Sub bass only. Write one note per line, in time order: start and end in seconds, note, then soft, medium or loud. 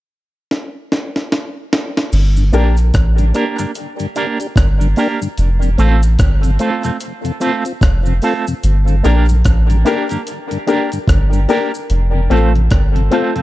2.13 2.51 G1 loud
2.53 2.92 A#1 medium
2.94 3.33 A1 loud
4.56 4.95 G1 medium
5.38 5.77 F1 loud
5.78 6.17 A1 loud
6.19 6.58 G1 medium
7.82 8.20 F1 medium
8.64 9.02 G1 loud
9.05 9.43 A#1 medium
9.46 9.84 A1 medium
11.08 11.47 G1 medium
11.90 12.28 F1 loud
12.30 12.69 A1 medium
12.71 13.10 G1 medium